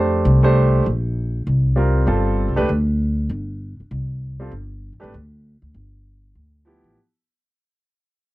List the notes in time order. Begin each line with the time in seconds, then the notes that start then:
Already playing: F2 A3 D4 G4 C5
0.25 C2
0.43 A3 D4 G4 C5
0.86 A#1
1.47 C2
1.76 G3 C4 F4 A#4
2.06 G1 G3 C4 F4 A4
2.48 C2
2.56 D2 A3 D4 G4 B4
2.69 D2
3.30 G1
3.80 muted upright bass stroke
3.91 C2
4.40 G3 C4 F4 A4
4.51 G1
4.93 A1
5.00 G#1 A3 D4 G4 B4
5.14 D2
5.62 D2
5.74 G1
6.35 D2
6.65 F3 B3 E4 G4
6.84 A1